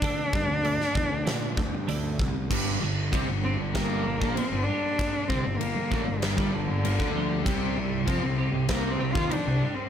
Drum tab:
CC |----------------|x---x---x---x---|x---x---x---x---|x---x---x---x---|
HH |o---o---o---o---|----------------|----------------|----------------|
SD |-----o--o-------|--------o-------|--------o-------|--------o-------|
BD |o-o---o---o---o-|o---o---o--o----|o-o---o--o---o--|o---o---o--o----|